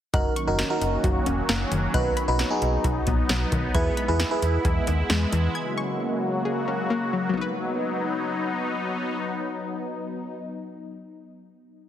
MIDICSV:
0, 0, Header, 1, 6, 480
1, 0, Start_track
1, 0, Key_signature, 5, "major"
1, 0, Tempo, 451128
1, 145, Time_signature, 4, 2, 24, 8
1, 12650, End_track
2, 0, Start_track
2, 0, Title_t, "FM electric piano"
2, 0, Program_c, 0, 5
2, 146, Note_on_c, 0, 63, 80
2, 146, Note_on_c, 0, 66, 73
2, 146, Note_on_c, 0, 70, 86
2, 358, Note_off_c, 0, 63, 0
2, 358, Note_off_c, 0, 66, 0
2, 358, Note_off_c, 0, 70, 0
2, 505, Note_on_c, 0, 63, 81
2, 506, Note_on_c, 0, 66, 72
2, 506, Note_on_c, 0, 70, 88
2, 647, Note_off_c, 0, 63, 0
2, 647, Note_off_c, 0, 66, 0
2, 647, Note_off_c, 0, 70, 0
2, 746, Note_on_c, 0, 63, 83
2, 746, Note_on_c, 0, 66, 73
2, 746, Note_on_c, 0, 70, 92
2, 1312, Note_off_c, 0, 63, 0
2, 1312, Note_off_c, 0, 66, 0
2, 1312, Note_off_c, 0, 70, 0
2, 2066, Note_on_c, 0, 63, 80
2, 2066, Note_on_c, 0, 66, 74
2, 2066, Note_on_c, 0, 71, 92
2, 2278, Note_off_c, 0, 63, 0
2, 2278, Note_off_c, 0, 66, 0
2, 2278, Note_off_c, 0, 71, 0
2, 2425, Note_on_c, 0, 66, 75
2, 2425, Note_on_c, 0, 71, 94
2, 2426, Note_on_c, 0, 63, 80
2, 2567, Note_off_c, 0, 63, 0
2, 2567, Note_off_c, 0, 66, 0
2, 2567, Note_off_c, 0, 71, 0
2, 2665, Note_on_c, 0, 63, 85
2, 2665, Note_on_c, 0, 66, 75
2, 2665, Note_on_c, 0, 68, 90
2, 3232, Note_off_c, 0, 63, 0
2, 3232, Note_off_c, 0, 66, 0
2, 3232, Note_off_c, 0, 68, 0
2, 3985, Note_on_c, 0, 68, 77
2, 3985, Note_on_c, 0, 71, 94
2, 3986, Note_on_c, 0, 64, 82
2, 4198, Note_off_c, 0, 64, 0
2, 4198, Note_off_c, 0, 68, 0
2, 4198, Note_off_c, 0, 71, 0
2, 4345, Note_on_c, 0, 64, 85
2, 4345, Note_on_c, 0, 68, 74
2, 4345, Note_on_c, 0, 71, 95
2, 4487, Note_off_c, 0, 64, 0
2, 4487, Note_off_c, 0, 68, 0
2, 4487, Note_off_c, 0, 71, 0
2, 4585, Note_on_c, 0, 64, 85
2, 4585, Note_on_c, 0, 71, 94
2, 4586, Note_on_c, 0, 68, 79
2, 5152, Note_off_c, 0, 64, 0
2, 5152, Note_off_c, 0, 68, 0
2, 5152, Note_off_c, 0, 71, 0
2, 12650, End_track
3, 0, Start_track
3, 0, Title_t, "Synth pluck"
3, 0, Program_c, 1, 84
3, 145, Note_on_c, 1, 90, 99
3, 367, Note_off_c, 1, 90, 0
3, 385, Note_on_c, 1, 85, 89
3, 607, Note_off_c, 1, 85, 0
3, 1105, Note_on_c, 1, 66, 84
3, 1327, Note_off_c, 1, 66, 0
3, 1346, Note_on_c, 1, 61, 80
3, 1567, Note_off_c, 1, 61, 0
3, 1586, Note_on_c, 1, 58, 88
3, 1807, Note_off_c, 1, 58, 0
3, 1826, Note_on_c, 1, 51, 71
3, 2047, Note_off_c, 1, 51, 0
3, 2065, Note_on_c, 1, 90, 104
3, 2287, Note_off_c, 1, 90, 0
3, 2306, Note_on_c, 1, 83, 89
3, 2527, Note_off_c, 1, 83, 0
3, 3025, Note_on_c, 1, 66, 82
3, 3247, Note_off_c, 1, 66, 0
3, 3265, Note_on_c, 1, 59, 79
3, 3487, Note_off_c, 1, 59, 0
3, 3505, Note_on_c, 1, 54, 89
3, 3727, Note_off_c, 1, 54, 0
3, 3746, Note_on_c, 1, 51, 72
3, 3967, Note_off_c, 1, 51, 0
3, 3985, Note_on_c, 1, 92, 103
3, 4207, Note_off_c, 1, 92, 0
3, 4225, Note_on_c, 1, 83, 89
3, 4446, Note_off_c, 1, 83, 0
3, 4945, Note_on_c, 1, 68, 80
3, 5166, Note_off_c, 1, 68, 0
3, 5185, Note_on_c, 1, 59, 77
3, 5406, Note_off_c, 1, 59, 0
3, 5425, Note_on_c, 1, 56, 92
3, 5646, Note_off_c, 1, 56, 0
3, 5665, Note_on_c, 1, 52, 73
3, 5887, Note_off_c, 1, 52, 0
3, 5905, Note_on_c, 1, 92, 107
3, 6126, Note_off_c, 1, 92, 0
3, 6145, Note_on_c, 1, 85, 90
3, 6366, Note_off_c, 1, 85, 0
3, 6865, Note_on_c, 1, 68, 81
3, 7086, Note_off_c, 1, 68, 0
3, 7105, Note_on_c, 1, 61, 78
3, 7326, Note_off_c, 1, 61, 0
3, 7345, Note_on_c, 1, 58, 94
3, 7566, Note_off_c, 1, 58, 0
3, 7585, Note_on_c, 1, 54, 73
3, 7748, Note_off_c, 1, 54, 0
3, 7761, Note_on_c, 1, 54, 83
3, 7803, Note_on_c, 1, 59, 77
3, 7846, Note_on_c, 1, 63, 78
3, 7889, Note_on_c, 1, 71, 92
3, 10942, Note_off_c, 1, 54, 0
3, 10984, Note_off_c, 1, 59, 0
3, 11027, Note_off_c, 1, 63, 0
3, 11069, Note_off_c, 1, 71, 0
3, 12650, End_track
4, 0, Start_track
4, 0, Title_t, "Analog synth pad"
4, 0, Program_c, 2, 89
4, 145, Note_on_c, 2, 51, 74
4, 145, Note_on_c, 2, 54, 69
4, 145, Note_on_c, 2, 58, 69
4, 145, Note_on_c, 2, 61, 67
4, 145, Note_on_c, 2, 66, 79
4, 2046, Note_off_c, 2, 51, 0
4, 2046, Note_off_c, 2, 58, 0
4, 2046, Note_off_c, 2, 61, 0
4, 2046, Note_off_c, 2, 66, 0
4, 2066, Note_on_c, 2, 59, 68
4, 2066, Note_on_c, 2, 63, 80
4, 3947, Note_off_c, 2, 54, 0
4, 3966, Note_off_c, 2, 63, 0
4, 3985, Note_on_c, 2, 56, 76
4, 3986, Note_on_c, 2, 64, 80
4, 5867, Note_off_c, 2, 59, 0
4, 5886, Note_off_c, 2, 64, 0
4, 5905, Note_on_c, 2, 49, 76
4, 5905, Note_on_c, 2, 54, 70
4, 5905, Note_on_c, 2, 58, 68
4, 5905, Note_on_c, 2, 66, 82
4, 7787, Note_off_c, 2, 56, 0
4, 7806, Note_off_c, 2, 49, 0
4, 7806, Note_off_c, 2, 54, 0
4, 7806, Note_off_c, 2, 58, 0
4, 7806, Note_off_c, 2, 66, 0
4, 7826, Note_on_c, 2, 54, 76
4, 7826, Note_on_c, 2, 59, 70
4, 7826, Note_on_c, 2, 63, 80
4, 11007, Note_off_c, 2, 54, 0
4, 11007, Note_off_c, 2, 59, 0
4, 11007, Note_off_c, 2, 63, 0
4, 12650, End_track
5, 0, Start_track
5, 0, Title_t, "FM bass"
5, 0, Program_c, 3, 39
5, 145, Note_on_c, 3, 30, 105
5, 313, Note_off_c, 3, 30, 0
5, 505, Note_on_c, 3, 30, 98
5, 673, Note_off_c, 3, 30, 0
5, 865, Note_on_c, 3, 30, 99
5, 1033, Note_off_c, 3, 30, 0
5, 1104, Note_on_c, 3, 30, 108
5, 1273, Note_off_c, 3, 30, 0
5, 1345, Note_on_c, 3, 28, 92
5, 1513, Note_off_c, 3, 28, 0
5, 1585, Note_on_c, 3, 30, 100
5, 1753, Note_off_c, 3, 30, 0
5, 1825, Note_on_c, 3, 30, 104
5, 1993, Note_off_c, 3, 30, 0
5, 2065, Note_on_c, 3, 35, 106
5, 2233, Note_off_c, 3, 35, 0
5, 2425, Note_on_c, 3, 35, 100
5, 2593, Note_off_c, 3, 35, 0
5, 2785, Note_on_c, 3, 35, 97
5, 2953, Note_off_c, 3, 35, 0
5, 3024, Note_on_c, 3, 35, 99
5, 3192, Note_off_c, 3, 35, 0
5, 3268, Note_on_c, 3, 34, 93
5, 3435, Note_off_c, 3, 34, 0
5, 3505, Note_on_c, 3, 35, 99
5, 3673, Note_off_c, 3, 35, 0
5, 3746, Note_on_c, 3, 35, 97
5, 3914, Note_off_c, 3, 35, 0
5, 3985, Note_on_c, 3, 40, 115
5, 4153, Note_off_c, 3, 40, 0
5, 4345, Note_on_c, 3, 40, 99
5, 4513, Note_off_c, 3, 40, 0
5, 4705, Note_on_c, 3, 40, 88
5, 4873, Note_off_c, 3, 40, 0
5, 4944, Note_on_c, 3, 40, 107
5, 5113, Note_off_c, 3, 40, 0
5, 5186, Note_on_c, 3, 39, 87
5, 5354, Note_off_c, 3, 39, 0
5, 5425, Note_on_c, 3, 40, 99
5, 5593, Note_off_c, 3, 40, 0
5, 5666, Note_on_c, 3, 40, 105
5, 5833, Note_off_c, 3, 40, 0
5, 12650, End_track
6, 0, Start_track
6, 0, Title_t, "Drums"
6, 145, Note_on_c, 9, 36, 117
6, 146, Note_on_c, 9, 42, 70
6, 252, Note_off_c, 9, 36, 0
6, 252, Note_off_c, 9, 42, 0
6, 387, Note_on_c, 9, 42, 72
6, 493, Note_off_c, 9, 42, 0
6, 624, Note_on_c, 9, 38, 99
6, 627, Note_on_c, 9, 42, 73
6, 731, Note_off_c, 9, 38, 0
6, 733, Note_off_c, 9, 42, 0
6, 867, Note_on_c, 9, 42, 58
6, 973, Note_off_c, 9, 42, 0
6, 1104, Note_on_c, 9, 36, 92
6, 1106, Note_on_c, 9, 42, 73
6, 1211, Note_off_c, 9, 36, 0
6, 1212, Note_off_c, 9, 42, 0
6, 1344, Note_on_c, 9, 42, 65
6, 1450, Note_off_c, 9, 42, 0
6, 1585, Note_on_c, 9, 38, 112
6, 1586, Note_on_c, 9, 42, 64
6, 1691, Note_off_c, 9, 38, 0
6, 1692, Note_off_c, 9, 42, 0
6, 1826, Note_on_c, 9, 42, 71
6, 1933, Note_off_c, 9, 42, 0
6, 2065, Note_on_c, 9, 36, 116
6, 2066, Note_on_c, 9, 42, 73
6, 2172, Note_off_c, 9, 36, 0
6, 2172, Note_off_c, 9, 42, 0
6, 2307, Note_on_c, 9, 42, 75
6, 2414, Note_off_c, 9, 42, 0
6, 2544, Note_on_c, 9, 38, 97
6, 2547, Note_on_c, 9, 42, 70
6, 2651, Note_off_c, 9, 38, 0
6, 2653, Note_off_c, 9, 42, 0
6, 2787, Note_on_c, 9, 42, 59
6, 2893, Note_off_c, 9, 42, 0
6, 3024, Note_on_c, 9, 36, 93
6, 3026, Note_on_c, 9, 42, 75
6, 3130, Note_off_c, 9, 36, 0
6, 3132, Note_off_c, 9, 42, 0
6, 3263, Note_on_c, 9, 42, 67
6, 3268, Note_on_c, 9, 36, 92
6, 3370, Note_off_c, 9, 42, 0
6, 3374, Note_off_c, 9, 36, 0
6, 3504, Note_on_c, 9, 38, 112
6, 3505, Note_on_c, 9, 42, 63
6, 3611, Note_off_c, 9, 38, 0
6, 3612, Note_off_c, 9, 42, 0
6, 3746, Note_on_c, 9, 36, 86
6, 3746, Note_on_c, 9, 42, 73
6, 3852, Note_off_c, 9, 36, 0
6, 3852, Note_off_c, 9, 42, 0
6, 3985, Note_on_c, 9, 36, 118
6, 3985, Note_on_c, 9, 42, 73
6, 4092, Note_off_c, 9, 36, 0
6, 4092, Note_off_c, 9, 42, 0
6, 4227, Note_on_c, 9, 42, 74
6, 4333, Note_off_c, 9, 42, 0
6, 4465, Note_on_c, 9, 38, 97
6, 4467, Note_on_c, 9, 42, 72
6, 4571, Note_off_c, 9, 38, 0
6, 4574, Note_off_c, 9, 42, 0
6, 4707, Note_on_c, 9, 42, 63
6, 4813, Note_off_c, 9, 42, 0
6, 4944, Note_on_c, 9, 36, 96
6, 4946, Note_on_c, 9, 42, 72
6, 5051, Note_off_c, 9, 36, 0
6, 5053, Note_off_c, 9, 42, 0
6, 5184, Note_on_c, 9, 42, 65
6, 5290, Note_off_c, 9, 42, 0
6, 5424, Note_on_c, 9, 38, 118
6, 5425, Note_on_c, 9, 42, 65
6, 5530, Note_off_c, 9, 38, 0
6, 5531, Note_off_c, 9, 42, 0
6, 5666, Note_on_c, 9, 42, 72
6, 5772, Note_off_c, 9, 42, 0
6, 12650, End_track
0, 0, End_of_file